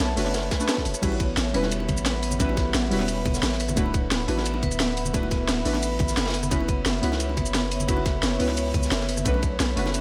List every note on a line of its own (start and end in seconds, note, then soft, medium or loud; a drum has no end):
0.00 0.15 B1 loud
0.00 0.16 A3 loud
0.00 0.17 C#4 loud
0.00 0.17 D4 medium
0.00 0.18 F#4 medium
0.00 0.17 B4 loud
0.00 0.19 B4 loud
0.00 3.73 C#5 medium
0.00 1.05 E5 loud
0.00 1.04 F#5 medium
0.00 1.00 A5 medium
0.00 0.34 B5 medium
0.00 snare loud
0.00 closed hi-hat loud
0.00 shaker medium
0.09 cross-stick soft
0.16 0.50 F#1 medium
0.16 0.58 A3 loud
0.16 0.58 C#4 medium
0.16 0.58 D4 medium
0.16 0.59 F#4 medium
0.16 0.34 B4 loud
0.16 0.59 B4 loud
0.16 open hi-hat medium
0.16 shaker soft
0.26 snare soft
0.26 closed hi-hat soft
0.34 0.50 B5 medium
0.34 snare loud
0.34 closed hi-hat loud
0.34 ride medium
0.34 shaker soft
0.43 closed hi-hat soft
0.51 0.67 B4 loud
0.51 kick loud
0.51 snare loud
0.51 closed hi-hat medium
0.51 ride medium
0.51 shaker soft
0.59 0.68 A3 medium
0.59 0.69 C#4 medium
0.59 0.69 D4 medium
0.59 0.69 F#4 medium
0.59 0.69 B4 medium
0.59 snare soft
0.59 closed hi-hat soft
0.59 shaker medium
0.69 0.84 A4 medium
0.69 snare loud
0.69 closed hi-hat loud
0.69 ride medium
0.69 shaker medium
0.77 kick medium
0.77 snare soft
0.85 0.94 F#1 medium
0.85 1.01 B4 medium
0.85 open hi-hat medium
0.85 ride medium
0.85 shaker soft
0.94 cross-stick soft
0.94 shaker medium
1.01 1.36 A1 loud
1.01 1.52 G3 medium
1.01 1.52 C#4 medium
1.01 1.52 E4 medium
1.01 1.53 F#4 medium
1.01 1.18 B4 medium
1.01 1.53 B4 loud
1.01 6.30 F#5 medium
1.01 3.74 B5 medium
1.01 kick loud
1.01 closed hi-hat loud
1.01 ride medium
1.01 crash medium
1.01 shaker medium
1.12 high bongo medium
1.20 1.35 B3 medium
1.20 kick loud
1.20 closed hi-hat medium
1.20 ride medium
1.20 shaker soft
1.37 1.53 A1 loud
1.37 1.53 E5 loud
1.37 snare loud
1.37 closed hi-hat loud
1.37 ride medium
1.37 shaker medium
1.46 cross-stick soft
1.53 1.90 E1 medium
1.53 2.37 G3 medium
1.53 2.38 C#4 medium
1.53 2.38 E4 medium
1.53 2.38 F#4 medium
1.53 1.71 B4 loud
1.53 2.39 B4 loud
1.53 open hi-hat medium
1.53 ride medium
1.63 snare soft
1.63 high bongo medium
1.71 1.87 B5 medium
1.71 closed hi-hat loud
1.71 ride loud
1.71 shaker medium
1.80 high bongo medium
1.89 2.39 A1 loud
1.89 2.04 B4 medium
1.89 kick medium
1.89 closed hi-hat medium
1.89 ride medium
1.89 high conga medium
1.89 shaker soft
1.97 closed hi-hat soft
1.97 ride soft
1.97 shaker medium
2.06 2.21 B4 medium
2.06 snare loud
2.06 closed hi-hat loud
2.06 ride medium
2.06 shaker soft
2.22 2.38 B3 medium
2.22 open hi-hat medium
2.22 ride medium
2.22 shaker soft
2.31 high conga medium
2.31 shaker medium
2.39 2.73 A1 loud
2.39 2.89 G3 loud
2.39 2.89 C#4 medium
2.39 2.89 E4 medium
2.39 2.90 F#4 medium
2.39 2.90 B4 loud
2.39 2.55 E5 loud
2.39 kick loud
2.39 closed hi-hat loud
2.39 ride medium
2.39 shaker medium
2.49 high bongo medium
2.57 2.73 B4 loud
2.57 kick loud
2.57 snare soft
2.57 closed hi-hat medium
2.57 ride medium
2.57 shaker soft
2.74 2.90 A1 loud
2.74 2.90 B5 medium
2.74 snare loud
2.74 closed hi-hat medium
2.74 ride loud
2.74 shaker medium
2.83 cross-stick soft
2.90 3.24 E1 loud
2.90 3.74 G3 medium
2.90 3.75 C#4 medium
2.90 3.75 E4 medium
2.90 3.75 F#4 medium
2.90 3.07 B4 medium
2.90 3.76 B4 loud
2.90 open hi-hat medium
3.00 snare soft
3.00 high bongo medium
3.08 3.24 B4 medium
3.08 closed hi-hat medium
3.08 ride medium
3.08 shaker soft
3.25 3.41 E1 medium
3.25 3.41 B3 medium
3.25 kick loud
3.25 closed hi-hat medium
3.25 ride medium
3.25 high conga loud
3.25 shaker soft
3.34 snare soft
3.34 closed hi-hat soft
3.34 shaker medium
3.43 3.76 A1 medium
3.43 3.58 E5 loud
3.43 snare loud
3.43 closed hi-hat loud
3.43 ride medium
3.43 shaker soft
3.52 snare medium
3.60 3.76 B4 loud
3.60 open hi-hat medium
3.60 ride medium
3.60 shaker soft
3.69 cross-stick soft
3.69 high conga loud
3.69 shaker medium
3.76 4.10 D1 loud
3.76 4.26 A3 loud
3.76 4.26 D4 medium
3.76 4.26 E4 medium
3.76 4.27 F#4 medium
3.76 4.27 B4 loud
3.76 9.22 E5 medium
3.76 3.92 B5 medium
3.76 9.22 B5 medium
3.76 kick loud
3.76 closed hi-hat loud
3.76 ride medium
3.76 shaker soft
3.86 high bongo medium
3.94 4.10 B4 medium
3.94 kick loud
3.94 closed hi-hat medium
3.94 ride medium
3.94 shaker soft
4.11 4.27 D1 loud
4.11 4.27 B4 medium
4.11 snare loud
4.11 closed hi-hat medium
4.11 ride medium
4.11 shaker medium
4.20 cross-stick soft
4.27 4.64 A1 medium
4.27 5.11 A3 loud
4.27 4.44 B3 medium
4.27 5.12 D4 medium
4.27 5.12 E4 medium
4.27 5.12 F#4 medium
4.27 5.13 B4 loud
4.27 open hi-hat medium
4.27 ride medium
4.37 snare soft
4.37 high bongo medium
4.46 4.61 E5 loud
4.46 closed hi-hat medium
4.46 ride loud
4.46 shaker soft
4.54 high bongo medium
4.63 5.13 D1 loud
4.63 4.79 B4 loud
4.63 kick medium
4.63 closed hi-hat medium
4.63 ride medium
4.63 high conga medium
4.63 shaker soft
4.71 closed hi-hat soft
4.71 ride soft
4.71 shaker medium
4.79 4.95 B5 medium
4.79 snare loud
4.79 closed hi-hat medium
4.79 ride loud
4.79 shaker soft
4.97 5.13 B4 medium
4.97 open hi-hat medium
4.97 ride medium
4.97 shaker soft
5.05 high conga medium
5.05 shaker medium
5.13 5.47 D1 loud
5.13 5.63 A3 loud
5.13 5.63 D4 medium
5.13 5.64 E4 medium
5.13 5.64 F#4 medium
5.13 5.30 B4 medium
5.13 5.64 B4 loud
5.13 kick loud
5.13 closed hi-hat medium
5.13 ride loud
5.13 shaker medium
5.23 high bongo medium
5.31 5.47 B3 medium
5.31 kick loud
5.31 snare soft
5.31 closed hi-hat medium
5.31 ride medium
5.31 shaker soft
5.48 5.64 D1 loud
5.48 5.64 E5 loud
5.48 snare loud
5.48 closed hi-hat loud
5.48 ride medium
5.48 shaker medium
5.57 cross-stick soft
5.64 5.99 A1 medium
5.64 6.33 A3 medium
5.64 6.33 D4 medium
5.64 6.33 E4 medium
5.64 6.34 F#4 medium
5.64 5.82 B4 loud
5.64 6.34 B4 loud
5.64 open hi-hat medium
5.64 shaker soft
5.74 snare soft
5.74 closed hi-hat soft
5.74 high bongo medium
5.83 5.98 B5 medium
5.83 closed hi-hat medium
5.83 ride medium
5.83 shaker soft
5.99 6.15 A1 medium
5.99 6.16 B4 medium
5.99 kick loud
5.99 closed hi-hat medium
5.99 ride medium
5.99 high bongo soft
5.99 high conga loud
5.99 shaker soft
6.08 snare soft
6.08 closed hi-hat soft
6.08 shaker medium
6.17 6.50 F#1 medium
6.17 6.33 B4 medium
6.17 snare loud
6.17 closed hi-hat medium
6.17 ride medium
6.17 shaker soft
6.25 snare medium
6.25 ride medium
6.30 snare medium
6.30 ride medium
6.34 6.50 B3 medium
6.34 10.01 C#5 medium
6.34 open hi-hat medium
6.34 ride medium
6.34 shaker soft
6.43 cross-stick soft
6.43 high conga medium
6.43 shaker medium
6.50 6.84 F#1 loud
6.50 7.00 B3 loud
6.50 7.00 C#4 medium
6.50 7.01 E4 loud
6.50 7.01 F#4 medium
6.50 6.67 B4 medium
6.50 7.02 B4 loud
6.50 kick loud
6.50 closed hi-hat loud
6.50 ride loud
6.50 shaker medium
6.60 high bongo medium
6.69 6.84 B3 medium
6.69 kick loud
6.69 closed hi-hat medium
6.69 ride medium
6.69 shaker soft
6.85 7.01 F#1 loud
6.85 7.01 E5 loud
6.85 snare loud
6.85 closed hi-hat medium
6.85 ride medium
6.85 shaker medium
6.95 cross-stick soft
7.01 7.39 C#2 medium
7.01 7.86 B3 loud
7.01 7.86 C#4 medium
7.01 7.87 E4 medium
7.01 7.87 F#4 medium
7.01 7.19 B4 loud
7.01 7.87 B4 loud
7.01 open hi-hat medium
7.01 ride medium
7.12 snare soft
7.12 high bongo medium
7.20 7.35 B5 medium
7.20 closed hi-hat medium
7.20 ride medium
7.20 shaker medium
7.29 high bongo medium
7.37 7.87 F#1 loud
7.37 7.53 B4 medium
7.37 kick medium
7.37 closed hi-hat medium
7.37 ride medium
7.37 high conga medium
7.37 shaker soft
7.46 closed hi-hat soft
7.46 ride soft
7.46 shaker medium
7.54 7.70 B4 medium
7.54 snare loud
7.54 closed hi-hat medium
7.54 ride medium
7.54 shaker medium
7.71 7.87 B3 medium
7.71 open hi-hat medium
7.71 ride medium
7.71 shaker soft
7.80 high conga medium
7.80 shaker medium
7.87 8.22 F#1 loud
7.87 8.37 B3 loud
7.87 8.38 C#4 medium
7.87 8.38 E4 medium
7.87 8.38 F#4 medium
7.87 8.39 B4 loud
7.87 8.04 E5 loud
7.87 kick loud
7.87 closed hi-hat loud
7.87 ride loud
7.87 shaker medium
7.97 high bongo medium
8.06 8.22 B4 loud
8.06 kick loud
8.06 snare soft
8.06 closed hi-hat medium
8.06 ride medium
8.06 shaker soft
8.23 8.38 F#1 loud
8.23 8.38 B5 medium
8.23 snare loud
8.23 closed hi-hat medium
8.23 ride medium
8.23 shaker medium
8.32 cross-stick soft
8.39 8.73 C#2 medium
8.39 9.23 B3 medium
8.39 9.23 C#4 medium
8.39 9.24 E4 medium
8.39 9.24 F#4 medium
8.39 8.56 B4 medium
8.39 9.24 B4 loud
8.39 open hi-hat medium
8.49 snare soft
8.49 high bongo medium
8.57 8.73 B4 medium
8.57 closed hi-hat medium
8.57 ride medium
8.57 shaker medium
8.74 8.90 C#2 medium
8.74 8.90 B3 medium
8.74 kick loud
8.74 closed hi-hat medium
8.74 ride medium
8.74 high conga medium
8.74 shaker soft
8.83 snare soft
8.83 closed hi-hat soft
8.83 shaker medium
8.91 9.24 F#1 medium
8.91 9.07 E5 loud
8.91 snare loud
8.91 closed hi-hat medium
8.91 ride medium
8.91 shaker medium
9.00 snare medium
9.09 9.25 B4 loud
9.09 open hi-hat medium
9.09 ride medium
9.09 shaker soft
9.17 cross-stick soft
9.17 high conga medium
9.17 shaker medium
9.24 9.59 B1 loud
9.24 9.74 A3 loud
9.24 9.75 C#4 medium
9.24 9.75 D4 medium
9.24 9.75 F#4 medium
9.24 9.76 B4 loud
9.24 10.01 A5 medium
9.24 9.41 B5 medium
9.24 kick loud
9.24 closed hi-hat loud
9.24 ride medium
9.24 shaker medium
9.34 high bongo medium
9.43 9.59 B4 medium
9.43 kick loud
9.43 closed hi-hat medium
9.43 ride medium
9.43 shaker soft
9.60 9.75 B1 loud
9.60 9.75 B4 medium
9.60 snare loud
9.60 closed hi-hat loud
9.60 ride medium
9.60 shaker medium
9.69 cross-stick soft
9.76 10.01 F#1 loud
9.76 10.01 A3 medium
9.76 9.92 B3 medium
9.76 10.01 C#4 medium
9.76 10.01 D4 medium
9.76 10.01 F#4 medium
9.76 10.01 B4 loud
9.76 open hi-hat medium
9.76 ride medium
9.86 snare soft
9.86 high bongo medium
9.94 10.01 E5 loud
9.94 closed hi-hat loud
9.94 ride medium
9.94 shaker medium